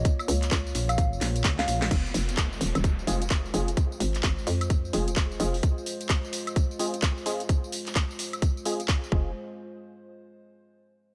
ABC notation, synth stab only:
X:1
M:4/4
L:1/8
Q:"Swing 16ths" 1/4=129
K:Fm
V:1 name="Synth stab"
z8 | z4 z [A,CFA] z [A,CFA] | z4 z [A,CFA] z [A,CFA] | z4 z [A,CFA] z [A,CFA] |
z4 z [A,CFA] z [A,CFA] | z8 |]